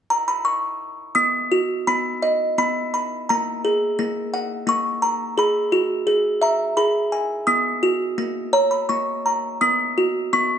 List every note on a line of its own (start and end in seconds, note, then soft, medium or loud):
0.10 0.28 A#5 medium
0.28 0.46 B5 medium
0.45 1.18 C#6 medium
1.15 1.87 B3 medium
1.15 1.89 D#6 medium
1.52 2.95 F#4 medium
1.87 2.57 B3 medium
1.87 2.57 B5 medium
2.22 3.29 D#5 medium
2.58 3.29 B3 medium
2.58 2.93 B5 medium
2.94 3.29 B5 medium
3.29 3.98 A#3 medium
3.29 4.73 A#5 medium
3.65 5.03 G#4 medium
3.99 4.66 A#3 medium
4.34 5.38 F#5 medium
4.67 5.37 A#3 medium
4.67 5.40 C#6 medium
5.02 5.37 A#5 medium
5.38 6.06 G#4 medium
5.38 6.04 B5 medium
5.72 7.12 F#4 medium
6.07 6.76 G#4 medium
6.42 7.47 E5 medium
6.42 6.78 A#5 medium
6.77 7.47 G#4 medium
6.77 7.49 B5 medium
7.12 7.47 G#5 medium
7.47 8.18 B3 medium
7.47 8.13 D#6 medium
7.83 8.18 F#4 medium
8.18 8.88 A#3 medium
8.53 9.62 C#5 medium
8.53 8.72 A#5 medium
8.71 8.90 B5 medium
8.89 9.62 A#3 medium
8.89 9.64 C#6 medium
9.26 9.62 A#5 medium
9.61 10.32 B3 medium
9.61 10.35 D#6 medium
9.98 10.59 F#4 medium
10.33 10.59 B3 medium
10.33 10.59 C#6 medium